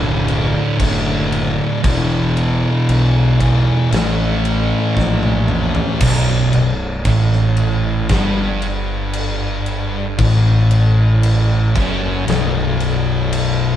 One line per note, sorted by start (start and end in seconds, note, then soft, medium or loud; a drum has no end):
0.00 0.55 B0 loud
0.00 0.76 D2 medium
0.00 1.81 D2 medium
0.00 0.77 A2 medium
0.00 1.81 A2 medium
0.00 0.76 D3 medium
0.00 1.82 D3 medium
0.28 crash medium
0.77 1.59 F#1 medium
0.77 1.80 D2 medium
0.77 1.81 A2 medium
0.77 kick loud
0.77 crash loud
0.82 1.82 D3 loud
1.32 crash medium
1.82 2.63 E1 loud
1.82 3.37 E2 medium
1.82 3.38 B2 loud
1.82 3.39 E3 loud
1.82 kick loud
1.82 crash medium
2.37 crash medium
2.89 3.68 B1 medium
2.89 crash medium
3.40 3.91 E2 medium
3.40 3.90 B2 medium
3.40 3.89 E3 loud
3.40 kick medium
3.40 crash medium
3.91 4.72 A1 loud
3.91 5.45 A2 medium
3.91 5.46 E3 medium
3.91 5.46 A3 loud
3.91 snare loud
3.91 crash medium
4.45 crash medium
4.97 5.76 A#1 medium
4.97 kick medium
4.97 snare medium
5.23 high tom medium
5.48 5.99 A2 medium
5.48 5.99 E3 medium
5.48 5.97 A3 loud
5.48 mid tom medium
5.75 floor tom loud
6.01 6.50 B0 loud
6.01 6.52 B1 loud
6.01 kick loud
6.01 crash loud
6.53 7.02 B0 medium
6.53 6.96 B1 medium
6.53 crash medium
7.05 8.06 A1 medium
7.05 8.09 A2 loud
7.05 kick loud
7.05 crash medium
7.33 snare soft
7.57 crash medium
8.09 10.15 G1 medium
8.09 10.18 G2 loud
8.09 kick medium
8.09 snare loud
8.09 crash medium
8.62 crash medium
9.13 crash medium
9.66 crash medium
10.18 11.72 A1 loud
10.18 11.74 A2 loud
10.18 kick loud
10.18 crash loud
10.71 crash medium
11.23 crash medium
11.76 12.24 F#1 loud
11.76 12.26 F#2 loud
11.76 kick loud
11.76 crash medium
12.27 13.76 B0 loud
12.27 13.76 B1 loud
12.27 snare loud
12.27 crash medium
12.80 crash medium
13.33 crash loud